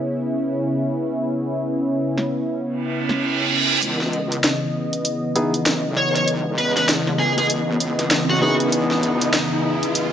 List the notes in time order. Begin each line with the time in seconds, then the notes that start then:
Already playing: C#3 B3 C#4 E4
2.18 snare
2.60 reverse cymbal
3.09 snare
3.82 C#2 C#3 E3 B3 D#5, closed hi-hat, riser
4.01 snare
4.13 closed hi-hat
4.32 closed hi-hat
4.44 snare, closed hi-hat
4.93 closed hi-hat
5.05 closed hi-hat
5.36 B3 D#4 E4 G#4, closed hi-hat
5.54 closed hi-hat
5.66 B1, snare, closed hi-hat
5.97 C#5
6.15 C#5, closed hi-hat
6.28 closed hi-hat
6.58 E2 B4, closed hi-hat
6.77 B4, snare, closed hi-hat
6.89 snare, closed hi-hat
7.07 snare
7.19 C#2 G#4
7.38 G#4, closed hi-hat
7.50 closed hi-hat
7.80 C#2, closed hi-hat
7.99 snare, closed hi-hat
8.11 C#2, snare, closed hi-hat
8.30 B1 F#4
8.42 F#2 B3 D#4 E4 F#4 G#4
8.60 closed hi-hat
8.72 C#2, closed hi-hat
8.91 snare
9.03 closed hi-hat
9.21 closed hi-hat
9.34 snare, closed hi-hat
9.83 closed hi-hat
9.95 closed hi-hat